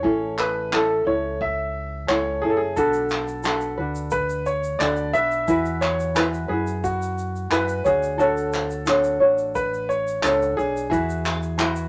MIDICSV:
0, 0, Header, 1, 5, 480
1, 0, Start_track
1, 0, Key_signature, 3, "major"
1, 0, Tempo, 679502
1, 33, Time_signature, 4, 2, 24, 8
1, 8396, End_track
2, 0, Start_track
2, 0, Title_t, "Upright piano"
2, 0, Program_c, 0, 0
2, 0, Note_on_c, 0, 73, 87
2, 281, Note_on_c, 0, 71, 81
2, 290, Note_off_c, 0, 73, 0
2, 501, Note_off_c, 0, 71, 0
2, 521, Note_on_c, 0, 69, 80
2, 754, Note_on_c, 0, 73, 78
2, 765, Note_off_c, 0, 69, 0
2, 978, Note_off_c, 0, 73, 0
2, 1000, Note_on_c, 0, 76, 83
2, 1449, Note_off_c, 0, 76, 0
2, 1472, Note_on_c, 0, 73, 85
2, 1696, Note_off_c, 0, 73, 0
2, 1707, Note_on_c, 0, 68, 78
2, 1762, Note_off_c, 0, 68, 0
2, 1765, Note_on_c, 0, 69, 71
2, 1814, Note_off_c, 0, 69, 0
2, 1814, Note_on_c, 0, 68, 82
2, 1954, Note_on_c, 0, 69, 82
2, 1959, Note_off_c, 0, 68, 0
2, 2908, Note_on_c, 0, 71, 82
2, 2943, Note_off_c, 0, 69, 0
2, 3152, Note_on_c, 0, 73, 82
2, 3159, Note_off_c, 0, 71, 0
2, 3383, Note_on_c, 0, 74, 82
2, 3401, Note_off_c, 0, 73, 0
2, 3627, Note_on_c, 0, 76, 110
2, 3636, Note_off_c, 0, 74, 0
2, 4105, Note_on_c, 0, 73, 80
2, 4125, Note_off_c, 0, 76, 0
2, 4354, Note_on_c, 0, 71, 79
2, 4357, Note_off_c, 0, 73, 0
2, 4408, Note_off_c, 0, 71, 0
2, 4586, Note_on_c, 0, 68, 75
2, 4830, Note_on_c, 0, 66, 74
2, 4837, Note_off_c, 0, 68, 0
2, 5311, Note_on_c, 0, 71, 84
2, 5326, Note_off_c, 0, 66, 0
2, 5536, Note_off_c, 0, 71, 0
2, 5554, Note_on_c, 0, 68, 79
2, 5787, Note_on_c, 0, 69, 83
2, 5801, Note_off_c, 0, 68, 0
2, 6722, Note_off_c, 0, 69, 0
2, 6747, Note_on_c, 0, 71, 83
2, 6986, Note_on_c, 0, 73, 81
2, 6998, Note_off_c, 0, 71, 0
2, 7232, Note_on_c, 0, 69, 80
2, 7237, Note_off_c, 0, 73, 0
2, 7456, Note_off_c, 0, 69, 0
2, 7466, Note_on_c, 0, 68, 90
2, 8396, Note_off_c, 0, 68, 0
2, 8396, End_track
3, 0, Start_track
3, 0, Title_t, "Ukulele"
3, 0, Program_c, 1, 24
3, 20, Note_on_c, 1, 68, 75
3, 25, Note_on_c, 1, 61, 77
3, 30, Note_on_c, 1, 64, 71
3, 33, Note_on_c, 1, 69, 79
3, 503, Note_off_c, 1, 61, 0
3, 507, Note_off_c, 1, 68, 0
3, 511, Note_on_c, 1, 61, 58
3, 512, Note_off_c, 1, 64, 0
3, 520, Note_on_c, 1, 64, 64
3, 526, Note_off_c, 1, 69, 0
3, 526, Note_on_c, 1, 69, 68
3, 731, Note_off_c, 1, 69, 0
3, 738, Note_off_c, 1, 64, 0
3, 740, Note_on_c, 1, 69, 51
3, 747, Note_on_c, 1, 64, 46
3, 753, Note_off_c, 1, 61, 0
3, 761, Note_on_c, 1, 61, 40
3, 1461, Note_off_c, 1, 69, 0
3, 1464, Note_on_c, 1, 68, 49
3, 1465, Note_off_c, 1, 61, 0
3, 1471, Note_off_c, 1, 64, 0
3, 1474, Note_on_c, 1, 61, 43
3, 1483, Note_on_c, 1, 64, 55
3, 1490, Note_on_c, 1, 69, 54
3, 1707, Note_off_c, 1, 69, 0
3, 1709, Note_off_c, 1, 68, 0
3, 1714, Note_off_c, 1, 61, 0
3, 1715, Note_off_c, 1, 64, 0
3, 1716, Note_on_c, 1, 69, 49
3, 1724, Note_on_c, 1, 64, 42
3, 1733, Note_on_c, 1, 61, 45
3, 1942, Note_off_c, 1, 69, 0
3, 1951, Note_on_c, 1, 69, 70
3, 1953, Note_off_c, 1, 61, 0
3, 1956, Note_on_c, 1, 62, 75
3, 1957, Note_off_c, 1, 64, 0
3, 1960, Note_on_c, 1, 66, 81
3, 1966, Note_on_c, 1, 71, 73
3, 2419, Note_off_c, 1, 69, 0
3, 2427, Note_off_c, 1, 62, 0
3, 2428, Note_on_c, 1, 69, 57
3, 2435, Note_on_c, 1, 62, 61
3, 2437, Note_off_c, 1, 66, 0
3, 2440, Note_on_c, 1, 66, 58
3, 2443, Note_off_c, 1, 71, 0
3, 2446, Note_on_c, 1, 71, 64
3, 2658, Note_off_c, 1, 71, 0
3, 2667, Note_on_c, 1, 71, 57
3, 2671, Note_off_c, 1, 69, 0
3, 2673, Note_off_c, 1, 66, 0
3, 2675, Note_off_c, 1, 62, 0
3, 2681, Note_on_c, 1, 66, 53
3, 2691, Note_on_c, 1, 62, 40
3, 3387, Note_off_c, 1, 71, 0
3, 3390, Note_on_c, 1, 69, 49
3, 3391, Note_off_c, 1, 62, 0
3, 3400, Note_off_c, 1, 66, 0
3, 3400, Note_on_c, 1, 62, 52
3, 3403, Note_on_c, 1, 66, 51
3, 3412, Note_on_c, 1, 71, 56
3, 3627, Note_off_c, 1, 71, 0
3, 3632, Note_off_c, 1, 69, 0
3, 3636, Note_off_c, 1, 66, 0
3, 3636, Note_on_c, 1, 71, 50
3, 3637, Note_off_c, 1, 62, 0
3, 3645, Note_on_c, 1, 66, 45
3, 3659, Note_on_c, 1, 62, 43
3, 3869, Note_off_c, 1, 62, 0
3, 3869, Note_on_c, 1, 68, 73
3, 3871, Note_off_c, 1, 66, 0
3, 3872, Note_on_c, 1, 64, 80
3, 3875, Note_off_c, 1, 71, 0
3, 3880, Note_on_c, 1, 66, 82
3, 3882, Note_on_c, 1, 71, 90
3, 4336, Note_off_c, 1, 68, 0
3, 4344, Note_on_c, 1, 68, 61
3, 4347, Note_off_c, 1, 64, 0
3, 4355, Note_on_c, 1, 64, 61
3, 4358, Note_off_c, 1, 71, 0
3, 4359, Note_off_c, 1, 66, 0
3, 4361, Note_on_c, 1, 66, 62
3, 4366, Note_on_c, 1, 71, 64
3, 4570, Note_off_c, 1, 71, 0
3, 4579, Note_on_c, 1, 71, 52
3, 4587, Note_off_c, 1, 66, 0
3, 4589, Note_off_c, 1, 68, 0
3, 4594, Note_off_c, 1, 64, 0
3, 4595, Note_on_c, 1, 66, 45
3, 4604, Note_on_c, 1, 64, 43
3, 5299, Note_on_c, 1, 68, 52
3, 5301, Note_off_c, 1, 64, 0
3, 5306, Note_off_c, 1, 71, 0
3, 5309, Note_on_c, 1, 64, 51
3, 5311, Note_off_c, 1, 66, 0
3, 5314, Note_on_c, 1, 66, 59
3, 5322, Note_on_c, 1, 71, 54
3, 5537, Note_off_c, 1, 71, 0
3, 5540, Note_on_c, 1, 73, 47
3, 5546, Note_off_c, 1, 68, 0
3, 5549, Note_off_c, 1, 66, 0
3, 5551, Note_off_c, 1, 64, 0
3, 5558, Note_on_c, 1, 66, 49
3, 5566, Note_on_c, 1, 62, 41
3, 5777, Note_off_c, 1, 62, 0
3, 5778, Note_on_c, 1, 69, 69
3, 5779, Note_off_c, 1, 66, 0
3, 5783, Note_off_c, 1, 73, 0
3, 5786, Note_on_c, 1, 62, 76
3, 5787, Note_on_c, 1, 66, 85
3, 5792, Note_on_c, 1, 73, 79
3, 6248, Note_off_c, 1, 69, 0
3, 6254, Note_off_c, 1, 73, 0
3, 6256, Note_on_c, 1, 69, 55
3, 6258, Note_off_c, 1, 62, 0
3, 6267, Note_on_c, 1, 62, 65
3, 6269, Note_off_c, 1, 66, 0
3, 6272, Note_on_c, 1, 66, 64
3, 6279, Note_on_c, 1, 73, 61
3, 6491, Note_off_c, 1, 73, 0
3, 6496, Note_off_c, 1, 69, 0
3, 6499, Note_on_c, 1, 73, 58
3, 6501, Note_off_c, 1, 66, 0
3, 6510, Note_off_c, 1, 62, 0
3, 6510, Note_on_c, 1, 66, 58
3, 6520, Note_on_c, 1, 62, 48
3, 7215, Note_off_c, 1, 73, 0
3, 7217, Note_on_c, 1, 69, 47
3, 7218, Note_off_c, 1, 62, 0
3, 7227, Note_on_c, 1, 62, 59
3, 7233, Note_off_c, 1, 66, 0
3, 7236, Note_on_c, 1, 66, 51
3, 7241, Note_on_c, 1, 73, 56
3, 7454, Note_off_c, 1, 73, 0
3, 7462, Note_on_c, 1, 73, 47
3, 7465, Note_off_c, 1, 66, 0
3, 7465, Note_off_c, 1, 69, 0
3, 7470, Note_off_c, 1, 62, 0
3, 7473, Note_on_c, 1, 66, 49
3, 7483, Note_off_c, 1, 66, 0
3, 7486, Note_on_c, 1, 62, 43
3, 7695, Note_off_c, 1, 73, 0
3, 7698, Note_on_c, 1, 68, 74
3, 7703, Note_on_c, 1, 64, 83
3, 7706, Note_off_c, 1, 62, 0
3, 7709, Note_on_c, 1, 66, 82
3, 7714, Note_on_c, 1, 71, 80
3, 8170, Note_off_c, 1, 68, 0
3, 8178, Note_on_c, 1, 68, 75
3, 8182, Note_off_c, 1, 64, 0
3, 8190, Note_on_c, 1, 64, 66
3, 8193, Note_off_c, 1, 66, 0
3, 8196, Note_on_c, 1, 66, 81
3, 8202, Note_off_c, 1, 68, 0
3, 8205, Note_off_c, 1, 71, 0
3, 8205, Note_on_c, 1, 71, 71
3, 8396, Note_off_c, 1, 64, 0
3, 8396, Note_off_c, 1, 66, 0
3, 8396, Note_off_c, 1, 71, 0
3, 8396, End_track
4, 0, Start_track
4, 0, Title_t, "Fingered electric bass"
4, 0, Program_c, 2, 33
4, 28, Note_on_c, 2, 33, 98
4, 723, Note_off_c, 2, 33, 0
4, 749, Note_on_c, 2, 37, 72
4, 1444, Note_off_c, 2, 37, 0
4, 1474, Note_on_c, 2, 37, 84
4, 1695, Note_off_c, 2, 37, 0
4, 1720, Note_on_c, 2, 30, 76
4, 1938, Note_off_c, 2, 30, 0
4, 1956, Note_on_c, 2, 35, 99
4, 2647, Note_off_c, 2, 35, 0
4, 2673, Note_on_c, 2, 38, 79
4, 3365, Note_off_c, 2, 38, 0
4, 3386, Note_on_c, 2, 38, 86
4, 3611, Note_off_c, 2, 38, 0
4, 3630, Note_on_c, 2, 35, 69
4, 3853, Note_off_c, 2, 35, 0
4, 3871, Note_on_c, 2, 40, 102
4, 4564, Note_off_c, 2, 40, 0
4, 4586, Note_on_c, 2, 42, 90
4, 5282, Note_off_c, 2, 42, 0
4, 5303, Note_on_c, 2, 42, 81
4, 5529, Note_off_c, 2, 42, 0
4, 5549, Note_on_c, 2, 38, 74
4, 6483, Note_off_c, 2, 38, 0
4, 6505, Note_on_c, 2, 33, 76
4, 7201, Note_off_c, 2, 33, 0
4, 7230, Note_on_c, 2, 37, 93
4, 7453, Note_off_c, 2, 37, 0
4, 7470, Note_on_c, 2, 35, 75
4, 7692, Note_off_c, 2, 35, 0
4, 7710, Note_on_c, 2, 40, 100
4, 8396, Note_off_c, 2, 40, 0
4, 8396, End_track
5, 0, Start_track
5, 0, Title_t, "Drums"
5, 29, Note_on_c, 9, 36, 100
5, 100, Note_off_c, 9, 36, 0
5, 271, Note_on_c, 9, 39, 75
5, 342, Note_off_c, 9, 39, 0
5, 514, Note_on_c, 9, 39, 110
5, 585, Note_off_c, 9, 39, 0
5, 995, Note_on_c, 9, 36, 96
5, 1065, Note_off_c, 9, 36, 0
5, 1477, Note_on_c, 9, 39, 97
5, 1547, Note_off_c, 9, 39, 0
5, 1956, Note_on_c, 9, 36, 104
5, 1956, Note_on_c, 9, 82, 61
5, 2026, Note_off_c, 9, 82, 0
5, 2027, Note_off_c, 9, 36, 0
5, 2071, Note_on_c, 9, 82, 40
5, 2142, Note_off_c, 9, 82, 0
5, 2185, Note_on_c, 9, 82, 39
5, 2201, Note_on_c, 9, 39, 70
5, 2255, Note_off_c, 9, 82, 0
5, 2271, Note_off_c, 9, 39, 0
5, 2316, Note_on_c, 9, 82, 44
5, 2387, Note_off_c, 9, 82, 0
5, 2426, Note_on_c, 9, 82, 59
5, 2444, Note_on_c, 9, 39, 102
5, 2497, Note_off_c, 9, 82, 0
5, 2515, Note_off_c, 9, 39, 0
5, 2549, Note_on_c, 9, 82, 49
5, 2620, Note_off_c, 9, 82, 0
5, 2792, Note_on_c, 9, 82, 44
5, 2862, Note_off_c, 9, 82, 0
5, 2902, Note_on_c, 9, 82, 56
5, 2914, Note_on_c, 9, 36, 102
5, 2972, Note_off_c, 9, 82, 0
5, 2985, Note_off_c, 9, 36, 0
5, 3033, Note_on_c, 9, 82, 49
5, 3104, Note_off_c, 9, 82, 0
5, 3150, Note_on_c, 9, 82, 44
5, 3221, Note_off_c, 9, 82, 0
5, 3274, Note_on_c, 9, 82, 45
5, 3344, Note_off_c, 9, 82, 0
5, 3395, Note_on_c, 9, 82, 63
5, 3396, Note_on_c, 9, 39, 93
5, 3466, Note_off_c, 9, 39, 0
5, 3466, Note_off_c, 9, 82, 0
5, 3507, Note_on_c, 9, 82, 44
5, 3577, Note_off_c, 9, 82, 0
5, 3635, Note_on_c, 9, 82, 50
5, 3705, Note_off_c, 9, 82, 0
5, 3753, Note_on_c, 9, 82, 44
5, 3823, Note_off_c, 9, 82, 0
5, 3870, Note_on_c, 9, 82, 64
5, 3871, Note_on_c, 9, 36, 107
5, 3941, Note_off_c, 9, 82, 0
5, 3942, Note_off_c, 9, 36, 0
5, 3993, Note_on_c, 9, 82, 42
5, 4064, Note_off_c, 9, 82, 0
5, 4110, Note_on_c, 9, 82, 38
5, 4118, Note_on_c, 9, 39, 77
5, 4180, Note_off_c, 9, 82, 0
5, 4189, Note_off_c, 9, 39, 0
5, 4238, Note_on_c, 9, 82, 46
5, 4309, Note_off_c, 9, 82, 0
5, 4351, Note_on_c, 9, 82, 58
5, 4355, Note_on_c, 9, 39, 101
5, 4421, Note_off_c, 9, 82, 0
5, 4426, Note_off_c, 9, 39, 0
5, 4477, Note_on_c, 9, 82, 48
5, 4548, Note_off_c, 9, 82, 0
5, 4712, Note_on_c, 9, 82, 43
5, 4783, Note_off_c, 9, 82, 0
5, 4831, Note_on_c, 9, 36, 96
5, 4835, Note_on_c, 9, 82, 56
5, 4901, Note_off_c, 9, 36, 0
5, 4905, Note_off_c, 9, 82, 0
5, 4960, Note_on_c, 9, 82, 51
5, 5030, Note_off_c, 9, 82, 0
5, 5074, Note_on_c, 9, 82, 41
5, 5144, Note_off_c, 9, 82, 0
5, 5198, Note_on_c, 9, 82, 43
5, 5269, Note_off_c, 9, 82, 0
5, 5307, Note_on_c, 9, 39, 88
5, 5314, Note_on_c, 9, 82, 63
5, 5378, Note_off_c, 9, 39, 0
5, 5385, Note_off_c, 9, 82, 0
5, 5429, Note_on_c, 9, 82, 48
5, 5499, Note_off_c, 9, 82, 0
5, 5549, Note_on_c, 9, 36, 103
5, 5549, Note_on_c, 9, 82, 51
5, 5620, Note_off_c, 9, 36, 0
5, 5620, Note_off_c, 9, 82, 0
5, 5672, Note_on_c, 9, 82, 43
5, 5743, Note_off_c, 9, 82, 0
5, 5790, Note_on_c, 9, 82, 62
5, 5860, Note_off_c, 9, 82, 0
5, 5913, Note_on_c, 9, 82, 42
5, 5983, Note_off_c, 9, 82, 0
5, 6022, Note_on_c, 9, 82, 38
5, 6034, Note_on_c, 9, 39, 78
5, 6092, Note_off_c, 9, 82, 0
5, 6105, Note_off_c, 9, 39, 0
5, 6149, Note_on_c, 9, 82, 49
5, 6219, Note_off_c, 9, 82, 0
5, 6262, Note_on_c, 9, 82, 58
5, 6272, Note_on_c, 9, 39, 106
5, 6333, Note_off_c, 9, 82, 0
5, 6342, Note_off_c, 9, 39, 0
5, 6384, Note_on_c, 9, 82, 50
5, 6455, Note_off_c, 9, 82, 0
5, 6627, Note_on_c, 9, 82, 45
5, 6697, Note_off_c, 9, 82, 0
5, 6749, Note_on_c, 9, 36, 96
5, 6749, Note_on_c, 9, 82, 57
5, 6820, Note_off_c, 9, 36, 0
5, 6820, Note_off_c, 9, 82, 0
5, 6880, Note_on_c, 9, 82, 52
5, 6950, Note_off_c, 9, 82, 0
5, 6994, Note_on_c, 9, 82, 43
5, 7065, Note_off_c, 9, 82, 0
5, 7117, Note_on_c, 9, 82, 45
5, 7188, Note_off_c, 9, 82, 0
5, 7227, Note_on_c, 9, 39, 98
5, 7241, Note_on_c, 9, 82, 63
5, 7297, Note_off_c, 9, 39, 0
5, 7312, Note_off_c, 9, 82, 0
5, 7360, Note_on_c, 9, 82, 45
5, 7430, Note_off_c, 9, 82, 0
5, 7481, Note_on_c, 9, 82, 47
5, 7552, Note_off_c, 9, 82, 0
5, 7607, Note_on_c, 9, 82, 45
5, 7677, Note_off_c, 9, 82, 0
5, 7710, Note_on_c, 9, 36, 113
5, 7718, Note_on_c, 9, 82, 64
5, 7780, Note_off_c, 9, 36, 0
5, 7788, Note_off_c, 9, 82, 0
5, 7837, Note_on_c, 9, 82, 39
5, 7908, Note_off_c, 9, 82, 0
5, 7948, Note_on_c, 9, 82, 40
5, 7953, Note_on_c, 9, 39, 81
5, 7953, Note_on_c, 9, 54, 59
5, 8018, Note_off_c, 9, 82, 0
5, 8023, Note_off_c, 9, 54, 0
5, 8024, Note_off_c, 9, 39, 0
5, 8072, Note_on_c, 9, 82, 49
5, 8143, Note_off_c, 9, 82, 0
5, 8184, Note_on_c, 9, 82, 59
5, 8189, Note_on_c, 9, 39, 111
5, 8255, Note_off_c, 9, 82, 0
5, 8260, Note_off_c, 9, 39, 0
5, 8306, Note_on_c, 9, 82, 50
5, 8376, Note_off_c, 9, 82, 0
5, 8396, End_track
0, 0, End_of_file